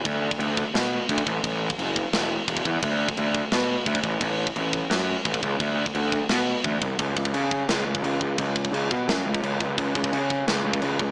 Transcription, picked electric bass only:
X:1
M:4/4
L:1/8
Q:1/4=173
K:Dlyd
V:1 name="Picked electric bass" clef=bass
D,,2 D,,2 B,,2 D,, A,,, | A,,,2 F,,,2 E,,,2 E,,, E,, | D,,2 D,,2 B,,2 D,, A,,, | A,,,2 A,,,2 F,,2 A,,, C,, |
D,,2 D,,2 B,,2 D,, =C,, | C,, C,, C,2 C,, C,, C,, C,, | C,,2 C,, B,, F,, C,, C,, C,, | C,, C,, C,2 C,, C,, C,, C,, |]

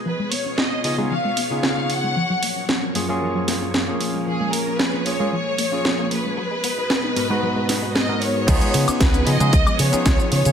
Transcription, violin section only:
X:1
M:4/4
L:1/8
Q:1/4=114
K:C#mix
V:1 name="Violin section"
B c d d e2 e f- | f2 z6 | G A B c c3 B- | B6 d c- |
c2 B d2 c2 c |]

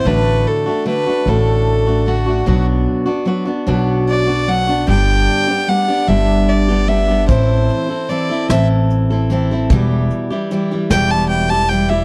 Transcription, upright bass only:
X:1
M:6/8
L:1/8
Q:3/8=50
K:Ador
V:1 name="Upright bass" clef=bass
A,,, z2 A,,,3 | B,,, z2 B,,,3 | G,,, z2 G,,,3 | A,,, z2 A,,,3 |
E,,, z2 E,,,3 |]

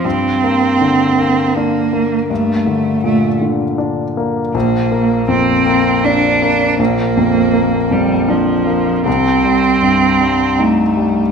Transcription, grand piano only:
X:1
M:3/4
L:1/8
Q:1/4=80
K:Bb
V:1 name="Grand piano" clef=bass
G,, B, D, B, D B, | G,, D, B,, D, D B, | B,,, B, F,, B, D B, | B,,, F,, B, F,, D B, |
C,, G, G,, G, E G, |]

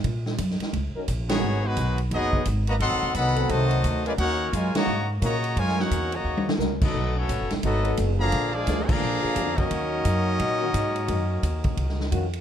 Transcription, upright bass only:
X:1
M:4/4
L:1/8
Q:"Swing" 1/4=174
K:Ebm
V:1 name="Upright bass" clef=bass
B,,2 G,, z D,, z B,,,2 | A,,,2 C,,2 G,,,2 A,,,2 | (3=A,,, ^F,,, E,,, =C,,2 C,,2 =D,,2 | E,,2 G,, z A,,2 B,,2 |
G,,2 _F,,2 E,,2 D,,2 | =B,,,2 (3=A,,, ^F,,, ^D,,, _A,,,2 F,,,2 | B,,,2 =D,,2 B,,, z F,,2 | E,,2 G,,2 B,,2 A,,2 |
G,,2 E,,2 D,,2 F,,2 |]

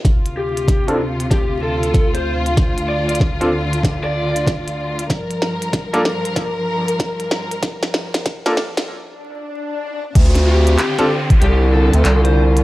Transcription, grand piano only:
X:1
M:4/4
L:1/16
Q:"Swing 16ths" 1/4=95
K:Dm
V:1 name="Grand piano"
z4 z [CDFA] z8 z2 | z4 z [CDFA] z8 z2 | z4 z [B,DFA] z8 z2 | z4 z [B,DFA] z8 z2 |
z4 z [CDFA] z8 z2 |]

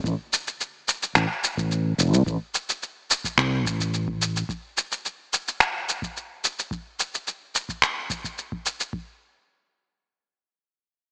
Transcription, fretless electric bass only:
X:1
M:4/4
L:1/16
Q:1/4=108
K:Am
V:1 name="Fretless electric bass" clef=bass
A,,, z6 z A,,, z2 A,,,2 z E,,, C,, | A,,, z6 z C,,2 A,,,4- A,,, z | z16 | z16 |
z16 |]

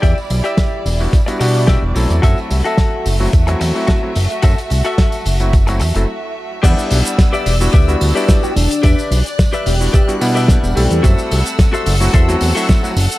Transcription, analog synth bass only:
X:1
M:4/4
L:1/16
Q:1/4=109
K:Em
V:1 name="Analog synth bass" clef=bass
E,, z B,,, z3 E,,,2 z2 B,,3 E,,, B,,, E,, | F,, z C,, z3 F,,,2 E,,2 E,, z3 F,,, z | F,, z C,, z3 F,,,4 E,, F,,, z4 | E,, z B,,, z3 E,,,2 D,,2 D,, z3 E,,, z |
E,, z B,,, z3 E,,,2 z2 B,,3 E,,, B,,, E,, | F,, z C,, z3 F,,,2 E,,2 E,, z3 F,,, z |]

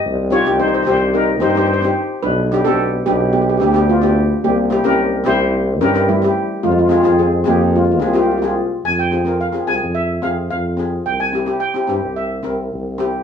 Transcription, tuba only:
X:1
M:4/4
L:1/16
Q:1/4=109
K:Cphr
V:1 name="Tuba" clef=bass
C,,3 C,,3 C,,4 G,,4 z2 | =B,,,3 B,,,3 B,,,4 =D,,6 | C,,3 C,,3 C,,4 G,,4 z2 | F,,3 F,,3 F,,4 C,,6 |
[K:Fm] F,,6 C,, F,,3 F,,2 F,,4 | C,,4 z2 G,, C,,3 C,,2 C,,4 |]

